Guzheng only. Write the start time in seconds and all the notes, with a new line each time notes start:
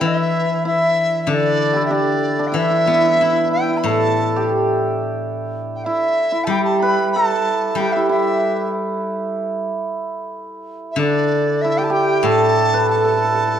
0.01 E3
1.27 D3
2.54 E3
2.87 B3
3.21 E4
3.84 A2
6.47 G3
7.75 G3
10.96 D3
12.23 A2